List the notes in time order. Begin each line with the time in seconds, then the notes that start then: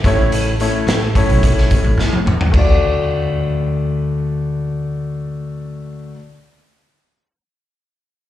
0.04 A1 A3 C#4 E4 C#5, kick, snare, closed hi-hat
0.32 closed hi-hat
0.60 A3 C#4 E4 C#5, closed hi-hat
0.87 A1, snare, closed hi-hat
1.15 A3 C#4 E4 C#5, kick, closed hi-hat
1.29 B1, closed hi-hat
1.43 kick, closed hi-hat
1.58 snare
1.71 A1, kick, closed hi-hat
1.84 A1
1.97 A2, snare
2.13 high tom
2.26 E2, mid tom
2.41 floor tom
2.52 D2 A3 D4, kick, crash
2.56 F#4 D5